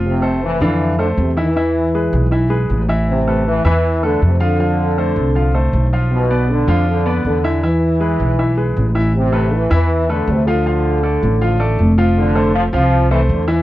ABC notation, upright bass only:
X:1
M:4/4
L:1/8
Q:1/4=158
K:Am
V:1 name="Upright bass" clef=bass
F,,,3 F,,3 E,,2- | E,,3 B,,,3 A,,,2- | A,,,3 E,,3 F,,2- | F,,3 C,,3 B,,,2- |
B,,,3 F,,3 E,,2- | E,,3 B,,,3 A,,,2- | A,,,3 E,,3 D,,2- | D,,3 A,,,3 F,,,2- |
F,,,3 C,,3 E,,2 |]